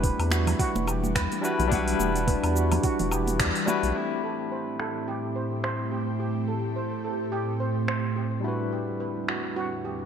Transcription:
Already playing: E1 E3 G3 D4 E4 B4
0.03 B4, kick, open hi-hat, shaker
0.19 E2, open hi-hat, low woodblock, shaker
0.30 F#4, finger snap, muted conga, shaker
0.47 open hi-hat, low conga, low woodblock, shaker
0.59 F#4, kick, open hi-hat, shaker
0.75 E1, muted conga, high conga, shaker
0.87 G4, low woodblock, shaker
1.04 high conga, shaker
1.15 E2 B4, finger snap, kick, open hi-hat, shaker
1.32 open hi-hat, muted conga, shaker
1.41 G3 D4 E4 F#4 B4, shaker
1.59 B1, open hi-hat, high conga, low conga, shaker
1.67 G3 D4 E4 F#4
1.72 B4 F#5, kick, open hi-hat, muted conga, shaker
1.88 open hi-hat, shaker
1.99 E1 G4, high conga, shaker
2.16 open hi-hat, shaker
2.27 B4, kick, open hi-hat, muted conga, shaker
2.44 E2, open hi-hat, low woodblock, shaker
2.55 F#4, shaker
2.72 open hi-hat, muted conga, low conga, low woodblock, shaker
2.83 F#4, kick, open hi-hat, shaker
2.99 E1, open hi-hat, high conga, low conga, shaker
3.11 G4, low woodblock, shaker
3.27 open hi-hat, muted conga, high conga, shaker
3.39 E2 D5, finger snap, kick, open hi-hat, shaker
3.55 open hi-hat, shaker
3.65 G3 D4 E4 F#4 B4, muted conga, shaker
3.83 B1, open hi-hat, high conga, shaker
3.92 A2 A3 C4 E4 G4
3.97 G4
4.23 A4
4.52 C5
4.80 A4, finger snap
5.08 G4
5.36 C5
5.64 C5, finger snap
5.92 G4
6.20 G4
6.48 A4
6.76 C5
7.04 A4
7.32 G4
7.60 C5
7.88 C5, finger snap
8.16 G4
8.40 D3 G3 D4 E4 F#4
8.45 E2 B4
8.72 G4
9.00 B4
9.28 F#4, finger snap
9.56 F#4
9.85 G4

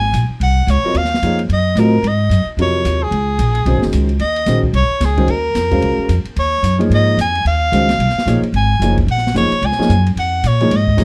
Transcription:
Already playing: G#1 G#5
0.13 A#1, hi-hat pedal, ride
0.29 muted upright bass stroke
0.40 C2 F#5, ride
0.67 C#2 C#5, hi-hat pedal, ride
0.84 F#3 C4 F4 A#4 D#5
0.94 D#2 F5, ride
1.05 snare
1.14 snare
1.22 F2 F3 A#3 D#4 G#4 C#5, hi-hat pedal, ride
1.39 ride
1.49 F#2, ride
1.53 D#5
1.75 A2 F#3 C4 F4, hi-hat pedal, ride
1.79 A#4 D#5
2.02 G#2, ride
2.08 D#5
2.30 F#2, hi-hat pedal, ride
2.46 muted upright bass stroke
2.57 F2 C3 F#3 F4 A#4 D#5, ride
2.62 C#5
2.85 D#2, hi-hat pedal, ride
3.03 G#4
3.11 C#2, ride
3.39 A#1, hi-hat pedal, ride
3.55 ride
3.65 C2 D#3 G#3 C#4 F#4 C5, ride
3.75 G#1
3.82 F#1, snare
3.93 C#2, hi-hat pedal, ride
4.09 ride
4.19 D#2 D#5, ride
4.36 ride
4.46 A#1 D#3 G#3 C#4 F#4 C5, snare, hi-hat pedal, ride
4.63 kick
4.73 C2 C#5, ride
4.88 muted upright bass stroke
5.00 C#2, snare, hi-hat pedal, ride
5.05 G#4
5.17 D#3 G#3 C#4 F#4 C5, kick, ride
5.28 D#2 A#4, ride
5.55 F2, snare, hi-hat pedal, ride
5.71 G#3 C#4 F#4 C5 F5, kick, ride
5.81 C#2, ride
5.98 muted upright bass stroke
6.09 F2, hi-hat pedal, ride
6.25 ride
6.36 D#2 C#5, ride
6.62 F#2, hi-hat pedal, ride
6.79 F3 A#3 D#4 G#4 C#5, ride
6.90 G#2, ride
6.94 D#5
7.17 F2, hi-hat pedal, ride
7.21 G#5
7.35 ride
7.45 D#2 F5, ride
7.72 C#2 D#3 G#3 C#4 F#4 C5, hi-hat pedal, ride
7.89 snare, ride
7.99 C2, ride
8.09 snare
8.15 muted upright bass stroke, snare
8.26 A#1 F3 A#3 D#4 G#4 C#5, hi-hat pedal, ride
8.42 muted upright bass stroke, ride
8.52 G#1 G#5, ride
8.80 F#1 F3 A#3 D#4 G#4 C#5, hi-hat pedal, ride
8.97 kick, ride
9.06 A#1, ride
9.11 F#5
9.18 snare
9.27 snare
9.34 F#1 F3 A#3 D#4 G#4 C#5, hi-hat pedal, ride
9.51 muted upright bass stroke, ride
9.62 C#2 G#5, ride
9.72 snare
9.78 F3 A#3 D#4 G#4 C#5, muted upright bass stroke, snare
9.89 F#2, hi-hat pedal, ride
10.06 ride
10.15 F2 F#5, ride
10.43 A#2, hi-hat pedal, ride
10.48 C#5
10.60 F3 A#3 D#4 G#4 C#5, ride
10.71 G#2, ride
10.76 D#5
10.88 kick
10.97 F#2 F3 A#3 D#4 G#4 C#5, hi-hat pedal, ride

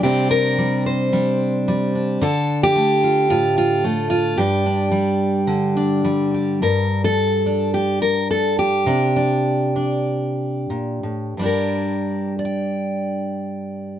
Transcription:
0.03 C3 G3 C4 D4 G4
0.31 A#4
0.58 G3
0.86 C5
1.13 G3 D4
1.68 G3
1.95 D4
2.21 D3 A4
2.63 G4
2.76 A3
3.04 F4
3.30 A2 F4
3.58 F4
3.84 A3
4.10 F4
4.38 G2 G3 D4 G4
4.66 D4
4.92 G3
5.47 D3
5.77 D4
6.05 G3
6.34 G4
6.62 G2 A#4
7.04 A4
7.46 D4
7.74 G4
8.02 A#4
8.31 A4
8.59 G4
8.86 C3 D4
9.16 D4
9.76 D4
10.70 A#2
11.03 A2
11.37 G2 G3
11.41 D4 G4
11.46 A#4
12.39 D5
12.45 G5

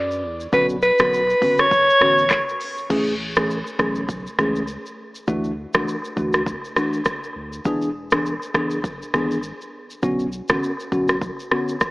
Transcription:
Already playing: F#2 D5
0.11 shaker
0.23 E2
0.40 shaker
0.52 B1 D3 B3 C#4 F#4 B4, kick, shaker
0.69 shaker
0.82 B4, shaker
0.99 B1 D3 B3 C#4 F#4, kick, cross-stick, shaker
1.14 shaker
1.30 shaker
1.41 F#1 D3 B3 C#4 F#4, kick, open hi-hat, shaker
1.58 C#5, cross-stick, shaker
1.71 kick, shaker
1.90 shaker
2.00 A1 D3 B3 C#4 F#4, cross-stick
2.18 shaker
2.30 kick, cross-stick, clap, shaker
2.49 shaker
2.61 open hi-hat, shaker
2.78 shaker
2.90 A1 E3 A3 C#4 G#4, kick, crash, shaker
3.07 shaker
3.36 E3 A3 C#4 G#4, kick, cross-stick, shaker
3.50 shaker
3.67 shaker
3.79 B1 E3 A3 C#4 G#4, kick, cross-stick, shaker
3.95 shaker
4.09 kick, shaker
4.27 shaker
4.39 C#2 E3 A3 C#4 G#4, kick, cross-stick, shaker
4.56 shaker
4.68 shaker
4.86 shaker
5.15 shaker
5.27 D2 E3 A3 D4 F#4, kick, shaker
5.44 shaker
5.74 C#2 E3 A3 D4 F#4, kick, cross-stick, shaker
5.88 shaker
6.05 shaker
6.16 D2 E3 A3 D4 F#4, kick, shaker
6.33 cross-stick, shaker
6.46 kick, shaker
6.65 shaker
6.76 E3 A3 D4 F#4, cross-stick, shaker
6.93 shaker
7.05 kick, cross-stick, shaker
7.24 shaker
7.36 D2
7.53 shaker
7.65 E1 E3 B3 D4 G#4, kick, shaker
7.82 shaker
8.11 E3 B3 D4 G#4, kick, cross-stick, shaker
8.26 shaker
8.42 shaker
8.54 F#1 E3 B3 D4 G#4, kick, cross-stick, shaker
8.71 shaker
8.84 kick, shaker
9.02 shaker
9.14 G#1 E3 B3 D4 G#4, kick, cross-stick, shaker
9.31 shaker
9.43 shaker
9.61 shaker
9.90 shaker
10.03 B1 D3 B3 C#4 F#4, kick, shaker
10.19 shaker
10.32 shaker
10.49 A1 D3 B3 C#4 F#4, kick, cross-stick, shaker
10.63 shaker
10.80 shaker
10.92 B1 D3 B3 C#4 F#4, kick, shaker
11.08 cross-stick, shaker
11.22 kick, shaker
11.40 shaker
11.51 D3 B3 C#4 F#4, cross-stick
11.69 shaker
11.81 kick, cross-stick, shaker

